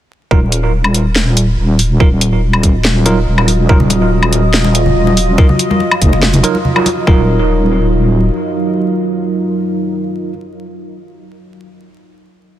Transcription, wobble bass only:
0.31 1.56 D#1 loud
1.58 1.99 D#1 medium
2.00 3.25 D#1 medium
3.27 3.68 D#1 loud
3.69 4.94 D#1 medium
4.96 5.37 D#1 loud
6.02 6.42 F1 loud
7.07 8.30 D#1 medium

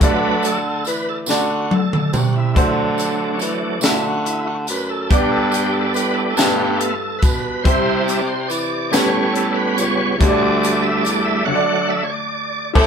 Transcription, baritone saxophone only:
0.01 0.82 D3 loud
0.86 1.25 E3 medium
1.29 1.83 D3 medium
2.13 2.52 C3 medium
2.56 3.37 D3 loud
3.42 3.80 E3 medium
3.84 4.65 D3 loud
4.69 5.08 F#2 medium
5.11 5.92 G2 loud
5.95 6.34 A2 medium
6.37 6.92 G2 loud
7.23 7.62 B2 medium
7.65 8.47 C3 loud
8.49 8.89 E3 medium
8.92 9.73 A2 loud
9.78 10.17 C#2 medium
10.21 11.02 D2 loud
11.05 11.45 E2 medium
12.75 12.87 A2 loud

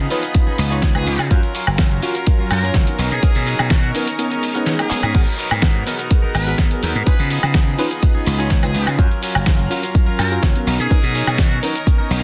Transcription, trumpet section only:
0.96 1.31 G#4 loud
2.51 2.70 A#4 medium
3.12 3.69 G#4 medium
3.71 3.90 F#4 medium
4.79 5.20 G#4 medium
6.35 6.54 B4 loud
7.07 7.26 B4 medium
8.63 8.99 G#4 loud
10.19 10.38 A#4 medium
10.79 11.37 G#4 medium
11.38 11.58 F#4 medium

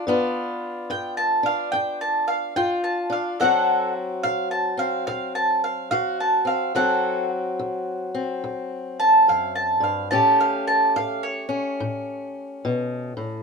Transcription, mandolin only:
0.90 1.17 G5 loud
1.17 1.44 A5 medium
1.46 1.71 F5 medium
1.72 2.00 G5 loud
2.01 2.27 A5 medium
2.28 2.55 F5 medium
2.56 2.83 G5 loud
2.84 3.11 A5 medium
3.12 3.40 F5 medium
3.40 3.90 A4 medium
3.40 3.92 F#5 loud
4.23 4.51 F5 loud
4.51 4.79 A5 medium
4.79 5.06 F5 medium
5.07 5.35 F5 medium
5.35 5.63 A5 medium
5.64 5.90 F5 medium
5.91 6.19 F5 loud
6.20 6.47 A5 medium
6.47 6.75 F5 medium
6.75 7.25 A4 medium
6.75 7.27 F#5 medium
9.00 9.27 A5 loud
9.29 9.55 F5 medium
9.55 9.83 A5 medium
9.84 10.10 F5 medium
10.11 10.38 A5 loud
10.41 10.67 F5 medium
10.67 10.95 A5 medium
10.96 11.23 F5 medium
11.23 13.43 C#5 medium

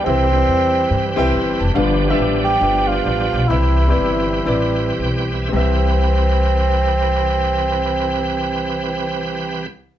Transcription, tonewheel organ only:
0.06 1.72 E3 medium
0.06 1.72 G3 medium
0.06 1.72 C4 medium
0.06 1.72 G4 medium
0.06 1.72 B4 medium
1.75 3.47 F3 medium
1.75 3.47 G3 medium
1.75 3.47 B3 medium
1.75 3.47 D4 medium
1.75 3.47 G4 loud
3.50 3.57 D3 medium
3.50 5.49 G3 medium
3.50 5.49 C4 medium
3.50 5.49 G4 medium
3.50 5.49 B4 medium
3.56 5.51 E3 medium
4.99 5.31 G5 medium
5.34 5.52 E5 medium
5.54 9.66 E3 medium
5.54 9.66 C4 medium
5.54 9.66 G4 medium
5.54 9.66 B4 medium

